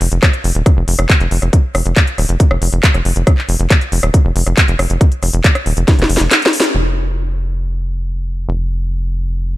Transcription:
0.01 analog synth bass F1, open hi-hat
0.12 analog synth bass F1, closed hi-hat
0.23 kick, cross-stick, clap, closed hi-hat
0.34 closed hi-hat
0.44 analog synth bass F1, open hi-hat
0.55 analog synth bass D#1, closed hi-hat
0.66 kick, cross-stick, closed hi-hat
0.77 analog synth bass F1
0.88 analog synth bass F1, open hi-hat
0.99 analog synth bass F1, cross-stick, closed hi-hat
1.10 kick, clap, closed hi-hat
1.20 analog synth bass F1, closed hi-hat
1.31 analog synth bass F1, open hi-hat
1.42 analog synth bass F1, cross-stick, closed hi-hat
1.53 kick, closed hi-hat
1.75 analog synth bass F1, cross-stick, open hi-hat
1.86 analog synth bass F1, closed hi-hat
1.96 kick, clap, closed hi-hat
2.07 closed hi-hat
2.18 analog synth bass D#1, cross-stick, open hi-hat
2.29 analog synth bass F1, closed hi-hat
2.40 kick, closed hi-hat
2.51 analog synth bass F1, cross-stick
2.62 analog synth bass F1, open hi-hat
2.73 analog synth bass F1, closed hi-hat
2.83 kick, clap, closed hi-hat
2.94 analog synth bass F1, cross-stick, closed hi-hat
3.05 analog synth bass F1, open hi-hat
3.16 analog synth bass F1, closed hi-hat
3.27 kick, cross-stick, closed hi-hat
3.38 clap
3.49 analog synth bass F1, open hi-hat
3.60 analog synth bass F1, closed hi-hat
3.70 kick, cross-stick, clap, closed hi-hat
3.81 closed hi-hat
3.92 analog synth bass F1, open hi-hat
4.03 analog synth bass D#1, cross-stick, closed hi-hat
4.14 kick, closed hi-hat
4.25 analog synth bass F1
4.36 analog synth bass F1, open hi-hat
4.47 analog synth bass F1, cross-stick, closed hi-hat
4.57 kick, clap, closed hi-hat
4.68 analog synth bass F1, closed hi-hat
4.79 analog synth bass F1, cross-stick, open hi-hat
4.90 analog synth bass F1, closed hi-hat
5.01 kick, closed hi-hat
5.12 closed hi-hat
5.23 analog synth bass F1, cross-stick, open hi-hat
5.33 analog synth bass F1, closed hi-hat
5.44 kick, clap, closed hi-hat
5.55 cross-stick, closed hi-hat
5.66 analog synth bass D#1, open hi-hat
5.77 analog synth bass F1, closed hi-hat
5.88 kick, snare, closed hi-hat
5.99 analog synth bass F1, snare, closed hi-hat
6.10 analog synth bass F1, open hi-hat
6.17 analog synth bass F1, snare, closed hi-hat
6.31 snare, clap, closed hi-hat
6.42 snare, closed hi-hat
6.53 open hi-hat
6.60 snare, closed hi-hat
6.75 analog synth bass F1
8.49 analog synth bass F1

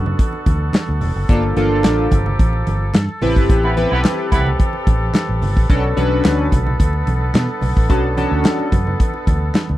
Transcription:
Already playing: fingered electric bass F#2, woodwind section D3 B3 F#4 A4
0.06 low conga
0.19 kick, closed hi-hat, muted conga, high conga
0.33 muted conga
0.46 fingered electric bass D2, kick, closed hi-hat, high conga
0.73 snare, clap, closed hi-hat, muted conga, high conga
0.88 fingered electric bass D2, muted conga
1.01 fingered electric bass E1, open hi-hat, low conga
1.16 fingered electric bass F#1
1.29 fingered electric bass G1, woodwind section F3 A#3 G4, analog polysynth A#3 D4 F4 A4, kick, closed hi-hat, muted conga
1.43 muted conga
1.56 fingered electric bass G1, analog polysynth A#3 D4 F4 A4, closed hi-hat, high conga
1.84 fingered electric bass A1, snare, clap, closed hi-hat, muted conga, high conga
2.11 fingered electric bass G1, kick, closed hi-hat, high conga, low conga
2.26 low conga
2.39 fingered electric bass A1, kick, closed hi-hat, high conga
2.53 muted conga
2.67 fingered electric bass G1, closed hi-hat, high conga
2.94 fingered electric bass G2, snare, clap, closed hi-hat, muted conga, high conga
3.09 muted conga
3.21 fingered electric bass A1, woodwind section C3 G4 B4, analog polysynth C4 E4 G4 B4, open hi-hat, low conga
3.36 fingered electric bass G1, kick
3.50 fingered electric bass A1, kick, closed hi-hat
3.63 horn section B3 E4 G4 B4, muted conga
3.77 analog polysynth B3 E4 G4 B4, closed hi-hat, high conga
3.83 analog polysynth C4
3.91 fingered electric bass B1, horn section B3 E4 G4 B4
4.05 snare, clap, closed hi-hat, muted conga, high conga
4.32 fingered electric bass C2, horn section B3 E4 G4 B4, kick, closed hi-hat, high conga, low conga
4.46 low conga
4.59 kick, closed hi-hat, high conga
4.73 muted conga
4.87 fingered electric bass A1, kick, closed hi-hat, high conga
5.14 snare, clap, closed hi-hat, muted conga, high conga
5.28 fingered electric bass A1, muted conga
5.42 fingered electric bass G1, open hi-hat, low conga
5.57 fingered electric bass A1, kick
5.69 fingered electric bass B1, woodwind section D3 B3, analog polysynth C#4 D4 F#4 A4, kick, closed hi-hat, muted conga
5.84 muted conga
5.97 fingered electric bass B1, analog polysynth C#4 D4 F#4 B4, closed hi-hat, high conga
6.25 fingered electric bass D2, snare, clap, closed hi-hat, high conga
6.52 fingered electric bass B1, kick, closed hi-hat, high conga, low conga
6.66 low conga
6.79 fingered electric bass D2, kick, closed hi-hat, high conga
6.93 muted conga
7.07 fingered electric bass B1, closed hi-hat, high conga
7.34 fingered electric bass B2, snare, clap, closed hi-hat, muted conga, high conga
7.48 muted conga
7.61 fingered electric bass B1, open hi-hat, low conga
7.77 fingered electric bass A1, kick
7.89 fingered electric bass B1, analog polysynth C#4 D4 F#4 A4, kick, closed hi-hat, muted conga
8.17 analog polysynth C#4 D4 F#4 A4, closed hi-hat, high conga
8.32 fingered electric bass D2
8.45 snare, clap, closed hi-hat, high conga
8.60 muted conga
8.72 fingered electric bass F#2, kick, closed hi-hat, high conga, low conga
8.87 low conga
9.00 kick, closed hi-hat, high conga
9.14 muted conga
9.27 fingered electric bass D2, kick, closed hi-hat, high conga
9.54 snare, clap, closed hi-hat, muted conga, high conga
9.69 fingered electric bass D2, muted conga

